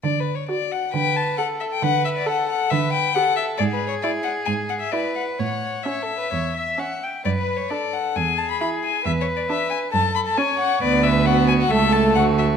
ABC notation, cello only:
X:1
M:4/4
L:1/8
Q:1/4=134
K:D
V:1 name="Cello" clef=bass
D,2 z2 D,2 z2 | D,2 z2 D,2 z2 | ^G,,2 z2 G,,2 z2 | A,,2 z2 E,,2 z2 |
[K:Emix] F,,2 z2 E,,2 z2 | E,,2 z2 F,,2 z2 | D,,4 C,,2 D,,2 |]